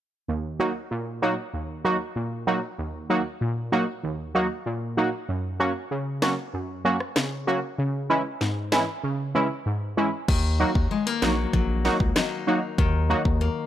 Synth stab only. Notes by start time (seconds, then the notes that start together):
0.28 D#2
0.60 F#3 A#3 D#4 F#4
0.91 A#2
1.22 F#3 A#3 D#4 F#4
1.53 D#2
1.85 F#3 A#3 D#4 F#4
2.16 A#2
2.47 F#3 A#3 D#4 F#4
2.78 D#2
3.10 F#3 A#3 D#4 F#4
3.41 A#2
3.72 F#3 A#3 D#4 F#4
4.03 D#2
4.35 F#3 A#3 D#4 F#4
4.66 A#2
4.97 F#3 A#3 D#4 F#4
5.29 F#2
5.60 F#3 A#3 C#4 F#4
5.91 C#3
6.22 F#3 A#3 C#4 F#4
6.54 F#2
6.85 F#3 A#3 C#4 F#4
7.16 C#3
7.47 F#3 A#3 C#4 F#4
7.78 C#3
8.10 E3 G#3 C#4 E4
8.41 G#2
8.72 E3 G#3 C#4 E4
9.04 C#3
9.35 E3 G#3 C#4 E4
9.66 G#2
9.97 E3 G#3 C#4 E4
10.60 F#3 A#3 D#4 F#4
11.22 F#3 A#3 D#4 F#4
11.85 F#3 A#3 D#4 F#4
12.47 F#3 A#3 D#4 F#4
13.10 F#3 A#3 D#4 F#4